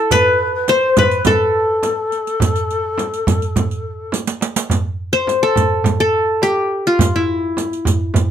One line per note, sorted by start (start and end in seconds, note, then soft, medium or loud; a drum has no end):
0.00 0.36 E4 loud
0.00 1.00 A4 loud
0.11 0.75 B4 loud
0.11 0.52 B4 medium
0.11 riq medium
0.11 frame drum medium
0.11 darbuka dum medium
0.25 darbuka ka soft
0.55 0.70 B4 medium
0.68 0.98 C5 medium
0.68 1.04 C5 loud
0.68 riq medium
0.68 darbuka tek medium
0.68 frame drum medium
0.83 darbuka ka soft
0.97 1.18 B4 medium
0.97 2.08 B4 medium
0.97 riq medium
0.97 frame drum loud
0.97 darbuka dum medium
1.11 riq soft
1.18 1.27 B4 medium
1.25 4.13 A4 medium
1.25 4.09 A4 medium
1.25 riq medium
1.25 frame drum loud
1.25 darbuka dum medium
1.83 riq soft
1.83 darbuka tek medium
1.83 frame drum medium
2.12 riq soft
2.27 riq soft
2.40 riq medium
2.40 frame drum medium
2.40 darbuka dum medium
2.56 riq soft
2.56 darbuka ka soft
2.71 riq soft
2.71 darbuka ka soft
2.98 riq soft
2.98 darbuka tek medium
2.98 frame drum medium
3.14 riq soft
3.27 riq medium
3.27 darbuka dum loud
3.27 frame drum medium
3.42 riq soft
3.42 darbuka ka soft
3.56 riq medium
3.56 darbuka dum medium
3.56 frame drum medium
3.71 riq soft
3.71 darbuka ka soft
4.12 riq medium
4.12 darbuka tek soft
4.12 frame drum medium
4.27 riq medium
4.27 darbuka ka medium
4.41 riq medium
4.41 darbuka tek medium
4.56 riq medium
4.56 darbuka ka medium
4.70 riq medium
4.70 frame drum medium
4.70 darbuka dum medium
4.85 darbuka ka soft
5.13 6.19 C5 medium
5.27 riq soft
5.27 darbuka tek medium
5.27 frame drum medium
5.43 6.00 A4 medium
5.56 riq medium
5.56 frame drum medium
5.56 darbuka dum medium
5.84 riq medium
5.84 frame drum medium
5.84 darbuka dum medium
5.99 7.17 A4 medium
5.99 riq soft
5.99 darbuka ka soft
6.42 7.68 G4 medium
6.42 riq soft
6.42 darbuka tek medium
6.42 frame drum medium
6.72 darbuka ka soft
6.86 7.22 F4 medium
6.86 riq soft
6.86 darbuka ka soft
6.99 riq medium
6.99 darbuka dum medium
6.99 frame drum medium
7.16 8.31 E4 medium
7.57 riq soft
7.57 darbuka tek medium
7.57 frame drum medium
7.73 riq soft
7.85 riq medium
7.85 frame drum medium
7.85 darbuka dum medium
8.14 riq medium
8.14 frame drum medium
8.14 darbuka dum medium